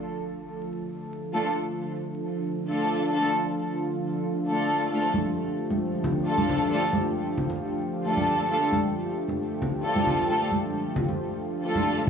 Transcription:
Already playing: D3 F3 A3 F4 A4
1.34 A3 D4 F4 A4
2.69 A3 D4 F4 A4
3.13 A3 D4 F4 A4
4.47 A3 D4 F4 A4
4.92 A3 D4 F4 G4 A4
5.14 high conga
5.70 muted conga, high conga
6.04 low conga
6.26 A3 D4 F4 A4
6.38 muted conga, high conga
6.49 low conga
6.61 muted conga
6.71 A3 D4 F4 A4
6.93 high conga
7.37 low conga
7.50 muted conga, high conga
8.05 A3 D4 F4 A4
8.17 muted conga, high conga
8.50 A3 D4 F4 A4
8.72 high conga
9.28 muted conga, high conga
9.62 low conga
9.85 A3 D4 F4 A4
9.95 muted conga, high conga
10.07 low conga
10.19 muted conga
10.29 A3 D4 F4 A4
10.52 high conga
10.96 low conga
11.08 muted conga, high conga
11.64 A3 D4 F4 A4
11.75 muted conga, high conga

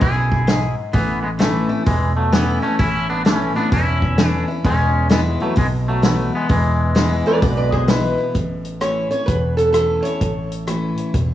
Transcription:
0.01 B1 F#2 E4 G#4, kick, open hi-hat
0.32 kick
0.47 G#2, snare, open hi-hat
0.93 A1 A2 E3 B3, kick, open hi-hat
1.23 G#3 B3
1.39 E3 A3 C#4 E4, snare, open hi-hat
1.69 C#4 E4
1.86 E1 E2 E3 G#3, kick, open hi-hat
2.17 F#3 A3
2.32 E3 A3 B3 C#4 E4, snare, open hi-hat
2.62 A3 C#4 E4
2.79 A1 A2 C#4 E4, kick, open hi-hat
3.09 B3 D4
3.25 E3 A3 C#4 E4, snare, open hi-hat
3.55 B3 C#4 D4 E4
3.72 E1 E2 C#4 E4, kick, open hi-hat
4.02 kick
4.18 E3 A3 C#4 E4, snare, open hi-hat
4.27 D4
4.48 C#4 E4
4.64 E1 E2 G#3 C#4, kick, open hi-hat
5.09 E3 G#3 B3 E4, snare, open hi-hat
5.40 F#3 A3 B3 E4
5.56 B1 B2 E3 G#3, kick, open hi-hat
5.88 F#3 A3
6.02 E3 B3 E4, snare, open hi-hat
6.35 G#3 B3
6.49 E1 E2 E3 G#3, kick, open hi-hat
6.95 E3 G#3 B3 E4, snare, open hi-hat
7.26 B3 E4 B4 D5
7.42 B1 B2 B4 D5, kick, open hi-hat
7.57 B4 D5
7.72 G#4 C5, kick
7.88 E3 G#3 B3 E4 B4, snare, open hi-hat
8.18 B3 E4
8.35 A1 A2, kick, closed hi-hat
8.65 closed hi-hat
8.81 E3 A3 C#4 E4 C#5, cross-stick, closed hi-hat
9.11 C#4 E4 C#5, closed hi-hat
9.26 E1 E2 B4, kick, closed hi-hat
9.57 A4, closed hi-hat
9.73 E3 A3 C#4 E4 A4, cross-stick, closed hi-hat
10.03 E4 C#5, closed hi-hat
10.07 C#4
10.21 A1 A2, kick, closed hi-hat
10.52 closed hi-hat
10.67 E3 A3 C#4 E4, cross-stick, closed hi-hat
10.98 closed hi-hat
11.14 E1 E2, kick, closed hi-hat

